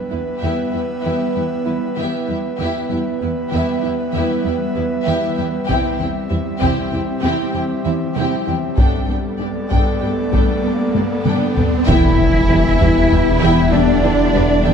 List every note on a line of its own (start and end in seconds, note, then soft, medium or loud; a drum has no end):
0.00 2.56 G3 medium
0.00 2.56 B3 medium
0.00 2.56 B4 medium
0.00 2.57 E5 soft
0.11 0.19 E2 soft
0.11 0.20 B3 soft
0.11 0.31 B3 soft
0.11 0.19 E4 soft
0.11 0.20 E4 soft
0.11 0.19 B4 soft
0.42 0.50 E2 soft
0.42 0.62 E3 medium
0.42 0.72 B3 soft
0.42 0.72 E4 soft
0.42 0.71 G4 soft
0.42 0.71 E5 soft
0.73 0.81 E2 soft
0.73 0.81 B3 soft
0.73 0.82 E4 soft
0.73 0.93 E4 soft
0.73 0.82 G4 soft
0.73 0.81 E5 soft
1.04 1.12 E2 soft
1.04 1.24 E3 medium
1.04 1.33 B3 soft
1.04 1.33 E4 soft
1.04 1.33 G4 soft
1.04 1.33 E5 soft
1.35 1.44 E2 soft
1.35 1.55 G3 soft
1.35 1.44 B3 soft
1.35 1.45 E4 soft
1.35 1.43 G4 soft
1.35 1.43 E5 soft
1.66 1.75 E2 soft
1.66 1.86 G3 medium
1.66 1.74 B3 soft
1.66 1.74 E4 soft
1.66 1.74 B4 soft
1.97 2.06 E2 soft
1.97 2.16 E3 medium
1.97 2.27 B3 soft
1.97 2.27 E4 soft
1.97 2.26 G4 soft
1.97 2.26 E5 soft
2.28 2.37 E2 soft
2.28 2.47 G3 soft
2.28 2.37 B3 soft
2.28 2.38 E4 soft
2.28 2.37 G4 soft
2.28 2.37 E5 soft
2.59 2.68 E2 soft
2.59 2.77 E3 medium
2.59 8.75 G3 medium
2.59 2.89 B3 soft
2.59 5.66 B3 medium
2.59 2.89 E4 soft
2.59 2.89 G4 medium
2.59 5.66 B4 medium
2.59 2.89 E5 soft
2.59 8.75 E5 medium
2.89 2.99 E2 soft
2.89 3.08 G3 soft
2.89 2.99 B3 soft
2.89 2.99 E4 soft
2.89 2.99 G4 soft
2.89 2.99 E5 soft
3.21 3.31 E2 soft
3.21 3.40 B3 medium
3.21 3.31 B3 soft
3.21 3.30 E4 soft
3.21 3.30 B4 soft
3.51 3.61 E2 medium
3.51 3.70 E3 medium
3.51 3.82 B3 soft
3.51 3.82 E4 soft
3.51 3.81 G4 soft
3.51 3.81 E5 medium
3.82 3.92 E2 soft
3.82 3.92 B3 soft
3.82 4.01 E4 medium
3.82 3.92 E4 soft
3.82 3.90 G4 soft
3.82 3.91 E5 soft
4.13 4.23 E2 medium
4.13 4.32 E3 medium
4.13 4.44 B3 soft
4.13 4.44 E4 medium
4.13 4.43 G4 soft
4.13 4.43 E5 soft
4.44 4.53 E2 soft
4.44 4.63 G3 medium
4.44 4.54 B3 soft
4.44 4.54 E4 soft
4.44 4.54 G4 soft
4.44 4.54 E5 soft
4.76 4.84 E2 soft
4.76 4.94 G3 medium
4.76 4.84 B3 soft
4.76 4.84 E4 soft
4.76 4.84 B4 soft
5.06 5.15 E2 medium
5.06 5.25 E3 medium
5.06 5.36 B3 medium
5.06 5.36 E4 soft
5.06 5.35 G4 medium
5.06 5.35 E5 medium
5.37 5.46 E2 soft
5.37 5.56 G3 soft
5.37 5.46 B3 soft
5.37 5.46 E4 soft
5.37 5.45 G4 soft
5.37 5.45 E5 soft
5.68 5.77 E2 medium
5.68 5.88 C3 medium
5.68 8.78 C4 medium
5.68 5.98 C4 medium
5.68 5.98 E4 medium
5.68 5.97 G4 medium
5.68 8.78 G4 medium
5.68 5.97 G5 medium
5.68 taiko medium
5.68 riser medium
5.99 6.08 E2 soft
5.99 6.18 E3 soft
5.99 6.08 C4 soft
5.99 6.08 E4 soft
5.99 6.08 G4 soft
5.99 6.08 G5 soft
6.30 6.38 E2 soft
6.30 6.49 G3 medium
6.30 6.39 C4 soft
6.30 6.38 E4 soft
6.30 6.39 E4 soft
6.30 6.39 E5 soft
6.61 6.70 E2 medium
6.61 6.80 C3 medium
6.61 6.90 C4 medium
6.61 6.90 E4 medium
6.61 6.90 G4 medium
6.61 6.90 G5 medium
6.61 taiko soft
6.92 7.00 E2 soft
6.92 7.00 C4 soft
6.92 7.11 C4 medium
6.92 7.00 E4 soft
6.92 7.00 G4 soft
6.92 7.01 G5 soft
7.23 7.31 E2 medium
7.23 7.42 C3 medium
7.23 7.52 C4 medium
7.23 7.52 E4 medium
7.23 7.52 G4 medium
7.23 7.53 G5 medium
7.54 7.62 E2 soft
7.54 7.73 E3 medium
7.54 7.63 C4 soft
7.54 7.62 E4 soft
7.54 7.62 G4 soft
7.54 7.63 G5 soft
7.85 7.93 E2 soft
7.85 8.04 E3 medium
7.85 7.94 C4 soft
7.85 7.93 E4 soft
7.85 7.95 E4 soft
7.85 7.93 E5 soft
8.16 8.24 E2 medium
8.16 8.35 C3 medium
8.16 8.45 C4 medium
8.16 8.45 E4 medium
8.16 8.46 G4 medium
8.16 8.46 G5 medium
8.47 8.55 E2 soft
8.47 8.66 E3 medium
8.47 8.56 C4 soft
8.47 8.56 E4 soft
8.47 8.55 G4 soft
8.47 8.56 G5 soft
8.78 8.86 G2 medium
8.78 8.97 G3 medium
8.78 11.84 G3 medium
8.78 9.07 B3 medium
8.78 11.86 B3 medium
8.78 9.07 D4 medium
8.78 11.88 A4 medium
8.78 9.07 A4 medium
8.78 11.88 D5 medium
8.78 9.07 G5 medium
8.78 taiko medium
9.08 9.16 G2 soft
9.08 9.17 B3 soft
9.08 9.28 B3 soft
9.08 9.17 D4 soft
9.08 9.17 A4 soft
9.08 9.18 G5 soft
9.39 9.47 G2 soft
9.39 9.48 B3 soft
9.39 9.58 D4 medium
9.39 9.48 D4 soft
9.39 9.48 G4 soft
9.39 9.48 D5 soft
9.70 9.78 G2 medium
9.70 9.90 G3 medium
9.70 10.00 B3 soft
9.70 10.00 D4 soft
9.70 10.00 A4 soft
9.70 10.00 G5 medium
9.70 taiko medium
10.01 10.09 G2 soft
10.01 10.10 B3 soft
10.01 10.10 D4 soft
10.01 10.21 G4 medium
10.01 10.09 A4 soft
10.01 10.09 G5 soft
10.32 10.40 G2 soft
10.32 10.51 G3 medium
10.32 10.62 B3 soft
10.32 10.62 D4 soft
10.32 10.62 A4 soft
10.32 10.62 G5 soft
10.32 taiko medium
10.64 10.72 G2 soft
10.64 10.82 B3 medium
10.64 10.73 B3 soft
10.64 10.73 D4 soft
10.64 10.72 A4 soft
10.64 10.72 G5 soft
10.95 11.03 G2 soft
10.95 11.03 B3 soft
10.95 11.14 B3 medium
10.95 11.03 D4 soft
10.95 11.04 G4 soft
10.95 11.03 D5 soft
10.95 taiko high medium
11.25 11.33 G2 soft
11.25 11.44 G3 medium
11.25 11.55 B3 soft
11.25 11.55 D4 soft
11.25 11.54 A4 soft
11.25 11.54 G5 soft
11.25 taiko mid medium
11.56 11.64 G2 soft
11.56 11.75 B3 medium
11.56 11.65 B3 soft
11.56 11.66 D4 soft
11.56 11.65 A4 soft
11.56 11.65 G5 soft
11.56 taiko low medium
11.86 14.74 E1 medium
11.86 11.96 E2 medium
11.86 13.68 E3 medium
11.86 12.06 E3 medium
11.86 14.74 G3 medium
11.86 14.74 B3 medium
11.86 12.17 B3 medium
11.86 13.69 E4 loud
11.86 12.16 E4 medium
11.86 14.74 G4 medium
11.86 14.74 E5 medium
11.86 12.16 E5 medium
11.86 13.69 E5 medium
11.86 12.16 G5 medium
11.86 taiko loud
11.86 impact medium
12.48 12.58 E2 medium
12.48 12.68 G3 medium
12.48 12.58 B3 medium
12.48 12.58 E4 medium
12.48 12.56 G4 soft
12.48 12.57 B4 medium
12.79 12.89 E2 medium
12.79 12.99 G3 medium
12.79 12.89 B3 medium
12.79 12.89 E4 medium
12.79 12.87 B4 medium
12.79 12.87 E5 medium
12.79 taiko low medium
13.10 13.20 E2 medium
13.10 13.20 B3 medium
13.10 13.29 E4 medium
13.10 13.20 E4 soft
13.10 13.19 E5 medium
13.10 13.20 G5 medium
13.10 taiko low medium
13.41 13.50 E2 medium
13.41 13.60 E3 loud
13.41 13.71 B3 medium
13.41 13.71 E4 medium
13.41 13.71 E5 medium
13.41 13.71 G5 medium
13.72 13.82 E2 medium
13.72 14.74 D3 medium
13.72 13.91 B3 medium
13.72 13.81 B3 medium
13.72 14.74 D4 medium
13.72 13.81 E4 medium
13.72 13.81 B4 medium
13.72 14.74 D5 medium
13.72 13.81 E5 medium
13.72 taiko low medium
14.03 14.13 E2 medium
14.03 14.12 B3 medium
14.03 14.23 E4 medium
14.03 14.12 E4 medium
14.03 14.11 G4 medium
14.03 14.11 B4 medium
14.34 14.44 E2 medium
14.34 14.53 G3 medium
14.34 14.43 B3 medium
14.34 14.43 E4 medium
14.34 14.42 B4 medium
14.34 14.42 E5 medium
14.65 14.74 E2 soft
14.65 14.73 B3 medium
14.65 14.74 E4 medium
14.65 14.73 E4 medium
14.65 14.74 E5 medium
14.65 14.74 G5 medium